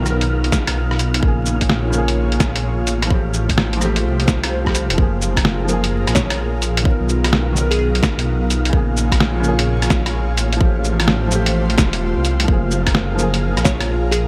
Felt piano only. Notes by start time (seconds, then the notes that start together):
Already playing: D#3 B3 A#4
0.02 D#3 B3
0.10 A#4
1.20 C#3
1.24 A#3
1.28 G#4
1.90 C#3 A#3
1.98 G#4
3.07 F3
3.11 A3
3.15 G4
3.77 F3
3.81 A3 G4
4.64 F3 A3
4.69 G4
4.94 F3
4.98 A#3 G#4
5.65 F3 A#3
5.73 G#4
6.82 D#3
6.86 B3 A#4
7.53 D#3
7.57 B3 A#4
8.69 C#3 A#3
8.77 G#4
9.40 C#3
9.44 A#3 G#4
10.57 F3 A3
10.65 G4
11.27 F3
11.31 A3
11.35 G4
12.44 F3
12.48 A#3
12.52 G#4
13.15 F3 A#3
13.22 G#4